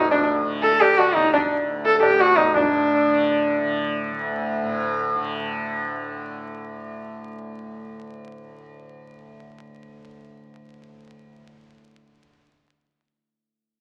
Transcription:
Already playing: D2 A2 D3 D#4
0.01 D#4
0.11 D4, tabla na, tabla ge
0.19 D4
0.40 D3
0.62 A4, tabla te
0.72 A4
0.80 G4, tabla na
0.89 G4
0.94 D3
0.98 F#4, tabla na
1.15 D#4, tabla tin, tabla ge
1.24 D#4
1.33 D4, tabla na, tabla ge
1.46 D2
1.85 A4, tabla te
1.95 A2 A4
2.02 G4, tabla na
2.10 G4
2.20 F#4, tabla na
2.29 F#4
2.37 D#4, tabla tin, tabla ge
2.54 A2 D4 D#4, tabla na, tabla ge
2.61 D4
3.06 D3
3.58 D3
4.12 D2
4.62 A2
5.14 D3

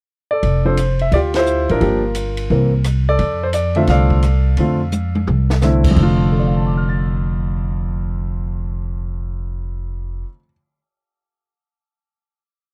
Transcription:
0.31 A4 D5
0.43 F1, kick, ride
0.65 F3 C4 D4 A4 C5
0.77 hi-hat pedal, ride
0.99 E5, ride
1.12 D2 F4 G4 D5, kick, ride
1.34 F4 C5, snare, ride
1.39 E4
1.46 hi-hat pedal
1.69 A1 D4 F4 A#4, ride
1.80 G1 F3 A#3 D4 G4, kick, ride
2.15 hi-hat pedal, ride
2.37 ride
2.50 C2 E3 A#3 C4 A#4, kick
2.84 cross-stick, hi-hat pedal, ride
3.09 A4 D5
3.19 F2, kick, ride
3.43 C5
3.53 D5, hi-hat pedal, ride
3.75 D3 A3 C4 F4 E5, ride
3.87 C2 A4 D5 F5, kick, snare, ride
4.10 kick
4.22 cross-stick, hi-hat pedal, ride
4.57 F2 D3 A3 C4 F4, kick, ride
4.92 hi-hat pedal, high tom
5.15 high tom
5.27 C2, mid tom
5.50 snare
5.61 D3 A3 C4 E4, snare, hi-hat pedal
5.84 kick, crash
5.91 F2 D3
5.96 F1 A3, kick, crash
6.03 F4
6.32 A4
6.39 D5
6.48 F5
6.57 A5
6.67 D6
6.77 F6
6.89 A6

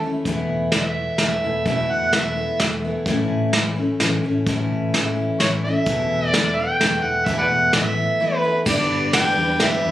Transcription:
Already playing: D#2
0.03 A3 C#4 E4
0.25 E1 E2 B2 E3 A3 B3 E4, kick, closed hi-hat
0.49 E1
0.72 E1 E3 A3 B3, snare, closed hi-hat
0.76 E4 E5
1.18 E1 E3 A3 B3 E4 E5, snare, closed hi-hat
1.44 E1 E3 A3 B3 E4
1.66 E1 E2 B2 E3 A3 B3 E4 E5, kick, closed hi-hat
1.91 E1 F#5
2.12 E1 E3 A3 B3 E4 E5, snare, closed hi-hat
2.36 E3 A3 B3 E4
2.59 E1 E3 A3 B3 E4, snare, closed hi-hat
2.84 E3 A3 B3 E4
3.06 A1 A2 E3 A3 C#4 E4, kick, closed hi-hat
3.30 A1
3.53 A1 E3 A3 C#4 E4, snare, closed hi-hat
3.76 A3 C#4 E4
4.00 A1 E3, snare, closed hi-hat
4.04 A3 C#4 E4
4.24 A1 A3 C#4 E4
4.46 A1 A2 E3 A3 C#4 E4, kick, closed hi-hat
4.71 A1
4.94 A1 E3 A3 C#4 E4, snare, closed hi-hat
5.40 A1 E3 A3 C#4 E4 C#5, snare, closed hi-hat
5.64 C#4 E4 E5
5.69 A3
5.86 E1 E2 B2 E3 A3 B3 E4, kick, closed hi-hat
6.12 E1
6.27 D5
6.33 E1 E3 A3 B3, snare, closed hi-hat
6.38 E4
6.55 E4 G5
6.60 E3 A3 B3
6.80 E1 E3 A3 B3 E4, snare, closed hi-hat
7.03 E1 F#5
7.26 E1 E2 B2 E3 A3 B3 E4 E5, kick, closed hi-hat
7.38 B4 D5 F#5
7.50 E1
7.73 A1 E3 A3 B3 E4 E5, snare, closed hi-hat
8.20 E3 A3 B3 E4 B4
8.43 E3 A3 B3 E4
8.65 G1 G2 D3 G3 B3 D4 G4 B4 D5, kick, crash
8.90 G1
9.13 G1 G3 B3 D4 G4 G5, snare, ride
9.38 E2 G3 B3 D4 G4
9.60 G1 G3 B3 D4 G4 E5, snare, ride
9.85 E2

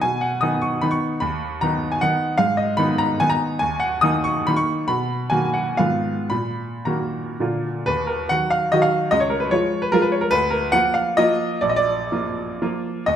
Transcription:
0.01 B2 G#5
0.21 F#5
0.41 D#3 B3 D#4 D#6
0.62 C#6
0.81 D#3 B3 D#4 B5
0.91 C#6
1.20 D#2 B5
1.61 D#3 B3 D#4 A#5
1.92 G#5
2.01 D#3 B3 D#4 F#5
2.38 G#2 F5
2.57 D#5
2.77 D#3 B3 D#4 B5
2.98 A#5
3.20 D#3 B3 D#4 G#5
3.30 A#5
3.59 D#2 G#5
3.80 F#5
4.01 D#3 A#3 D#4 D#6
4.24 C#6
4.47 D#3 A#3 D#4 B5
4.56 C#6
4.88 B2 B5
5.30 D#3 A#3 F#4 G#5
5.53 F#5
5.77 G#2 D#3 B3 F4 F5
6.30 A#2 B5
6.85 D#3 A#3 F#4 A#5
7.40 A#2 D3 A#3 F4
7.86 D#2 B4
8.07 A#4
8.29 D#3 F#3 F#4 F#5
8.50 F5
8.72 D#3 F#3 F#4 D#5
8.82 F5
9.11 C#2 D#5
9.20 C#5
9.30 A#4
9.40 B4
9.51 F3 G#3 F4 C#5
9.82 B4
9.92 F3 G#3 F4 A#4
10.02 B4
10.12 C#5
10.21 A#4
10.31 D2 B4
10.50 A#4
10.72 F3 A#3 F4 F#5
10.94 F5
11.17 F3 A#3 F4 D#5
11.61 A#1 D5
11.69 D#5
11.76 D5
12.12 F3 A#3 F4
12.62 F3 A#3 F4
13.06 D#2 D#5

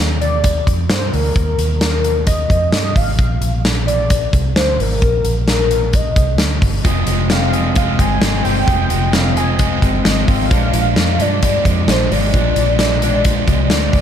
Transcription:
Already playing: D#2
0.21 D5, closed hi-hat
0.44 kick, closed hi-hat
0.67 F2, kick, closed hi-hat
0.89 G2 C5, snare, closed hi-hat
1.12 D2 A#4, open hi-hat
1.36 D#2, kick, closed hi-hat
1.58 D#2, closed hi-hat
1.81 A#4, snare, closed hi-hat
2.04 closed hi-hat
2.27 D#5, kick, closed hi-hat
2.50 F2, kick, closed hi-hat
2.72 G2 D#5, snare, closed hi-hat
2.96 G#1 F5, kick, open hi-hat
3.19 A#1, kick, closed hi-hat
3.41 A#1, closed hi-hat
3.65 snare, closed hi-hat
3.87 D5, closed hi-hat
4.10 kick, closed hi-hat
4.33 C2, kick, closed hi-hat
4.56 D2 C5, snare, closed hi-hat
4.79 G#1 A#4, open hi-hat
5.02 A#1, kick, closed hi-hat
5.24 A#1, closed hi-hat
5.48 A#4, snare, closed hi-hat
5.71 closed hi-hat
5.93 D#5, kick, closed hi-hat
6.16 C2, kick, closed hi-hat
6.38 D2, snare, closed hi-hat
6.62 G1, kick, open hi-hat
6.84 F1 F2 C3 F3 G#3 C4 G#4, kick, closed hi-hat
7.07 F1 G#3 C4, closed hi-hat
7.11 F3
7.30 C3 F3 G#3 C4 F5, snare, closed hi-hat
7.53 G#3 C4 G#4, closed hi-hat
7.57 F3
7.75 F2 C3 F3 G#3 C4 F5, kick, closed hi-hat
7.99 G1 F3 G#3 C4 G#5, kick, closed hi-hat
8.22 G#1 C3 F3 G#3 C4, snare, closed hi-hat
8.44 G1 F3 G#3 C4 G5, open hi-hat
8.67 F1 F2 C3 F3 G#3 C4 G#4, kick, closed hi-hat
8.90 F1 F3 G#3 C4, closed hi-hat
9.12 C3 F3 G#3 C4 F5, snare, closed hi-hat
9.35 F3 G#3 C4 G#4 G#5, closed hi-hat
9.59 F2 C3 F3 G#3 C4, kick, closed hi-hat
9.81 G1 F3 G#3 C4, kick, closed hi-hat
10.04 G#1 C3 F3 G#3 C4 D#5, snare, closed hi-hat
10.27 G#1 F3 G#3 C4 F5, kick, open hi-hat
10.49 A#1 A#2 F3 G#3 D4, kick, closed hi-hat
10.73 A#1 F3 G#3 D4, closed hi-hat
10.95 F2 A#2 F3 G#3, snare, closed hi-hat
11.00 D4
11.19 G2 G#3 D4 D5, closed hi-hat
11.23 F3
11.42 A#2 F3 G#3 D4 D5, kick, closed hi-hat
11.65 F2 F3 G#3 D4, kick, closed hi-hat
11.87 A#1 A#2 F3 G#3 C5, snare, closed hi-hat
11.91 D4
12.10 G#1 G#3 D4 D5, open hi-hat
12.15 F3
12.34 A#1 A#2 F3 G#3 D4, kick, closed hi-hat
12.56 A#1 F3 G#3 D4, closed hi-hat
12.78 A#2 F3 G#3 D4, snare, closed hi-hat
13.02 F3 G#3 D4, closed hi-hat
13.25 A#2 F3 G#3 D4, kick, closed hi-hat
13.47 C2 F3 G#3 D4, kick, closed hi-hat
13.69 D2 A#2 F3 G#3 D4 D5, snare, closed hi-hat
13.92 D2 F3 G#3 D4, kick, open hi-hat

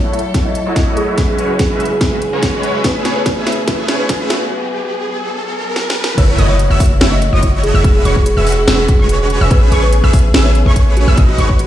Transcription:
Already playing: F#3 E4 A4, riser
0.04 A3 E4 F#4 C#5 E5
0.13 E5, closed hi-hat
0.19 closed hi-hat
0.34 A3 E4 F#4 C#5 E5, kick, snare, closed hi-hat
0.46 D#5
0.55 closed hi-hat
0.66 A3 E4 F#4 C#5 D#5
0.76 kick, snare, closed hi-hat
0.97 G#4, closed hi-hat
1.08 A3 E4 F#4 C#5 E5
1.18 C#3 F#3 G#3 C#4 F#4 G#4 B4 E5, kick, snare, closed hi-hat
1.28 G#4
1.38 G#3 C#4 F#4 B4 C#5, closed hi-hat
1.59 G#4, kick, snare, closed hi-hat
1.70 G#3 C#4 F#4 B4 E5
1.80 closed hi-hat
1.85 closed hi-hat
1.91 G#4
2.01 G#3 C#4 F#4 B4 E5, kick, snare, closed hi-hat
2.11 G#4
2.22 closed hi-hat
2.33 G#3 C#4 F#4 B4 C#5
2.43 kick, snare, closed hi-hat
2.63 closed hi-hat
2.74 G#3 C#4 F#4 B4 E5
2.84 A3 B3 C#4 G#4 B4 E5, kick, snare, closed hi-hat
3.05 A3 C#4 G#4 B4 C#5, snare, closed hi-hat
3.16 B4
3.26 kick, snare, closed hi-hat
3.37 A3 C#4 G#4 B4 E5
3.46 E5, snare, closed hi-hat
3.52 closed hi-hat
3.68 A3 C#4 G#4 B4 E5, kick, snare, closed hi-hat
3.88 A3 C#4 G#4 B4 C#5, snare, closed hi-hat
3.99 B4
4.09 kick, snare, closed hi-hat
4.20 A3 C#4 G#4 B4 E5
4.30 E5, snare, closed hi-hat
4.51 F#3
5.76 snare
5.90 snare
6.04 snare
6.18 F#1 E3 A3 E4 F#4 C#5 E5 E6, kick, closed hi-hat, crash, impact
6.38 F#1 A3 E4 F#4 C#5 D#5 D#6, closed hi-hat
6.50 C#5
6.59 closed hi-hat
6.70 F#1 A3 E4 F#4 C#5 E5 E6
6.80 E5, kick, open hi-hat
6.86 closed hi-hat
7.01 F#1 A3 E4 F#4 C#5 E5 E6, snare, closed hi-hat
7.12 D#5
7.22 closed hi-hat
7.33 F#1 A3 E4 F#4 C#5 D#5 D#6
7.43 kick, closed hi-hat
7.63 G#4, closed hi-hat
7.74 F#1 A3 E4 F#4 C#5 E5 E6
7.84 E1 C#3 G#3 C#4 F#4 B4 E5 E6, kick, closed hi-hat
7.95 G#4
8.05 E1 G#3 C#4 F#4 B4 C#5 C#6, closed hi-hat
8.16 kick
8.26 G#4, closed hi-hat
8.37 E1 G#3 C#4 F#4 B4 E5 E6
8.47 open hi-hat
8.52 closed hi-hat
8.57 G#4
8.68 E1 G#3 C#4 F#4 B4 E5 E6, snare, closed hi-hat
8.78 G#4
8.88 kick, closed hi-hat
8.99 E1 G#3 C#4 F#4 B4 C#5 C#6
9.09 closed hi-hat
9.30 closed hi-hat
9.41 E1 G#3 C#4 F#4 B4 E5 E6
9.51 A1 A3 B3 C#4 G#4 B4 E5 E6, kick, closed hi-hat
9.72 A1 A3 C#4 G#4 B4 C#5 C#6, closed hi-hat
9.83 B4
9.93 closed hi-hat
10.04 A1 A3 C#4 G#4 B4 E5 E6
10.13 E5, kick, open hi-hat
10.19 closed hi-hat
10.34 A1 A3 C#4 G#4 B4 E5 E6, snare, closed hi-hat
10.45 C#5
10.55 closed hi-hat
10.66 A1 A3 C#4 G#4 B4 C#5 C#6
10.76 kick, closed hi-hat
10.97 F#4, closed hi-hat
11.08 A1 A3 C#4 G#4 B4 E5 E6
11.17 G#1 B2 G#3 D#4 F#4 B4 D#5 D#6, kick, closed hi-hat
11.29 F#4
11.38 G#1 G#3 D#4 F#4 B4 C#5 C#6, closed hi-hat
11.49 kick
11.59 F#4, closed hi-hat

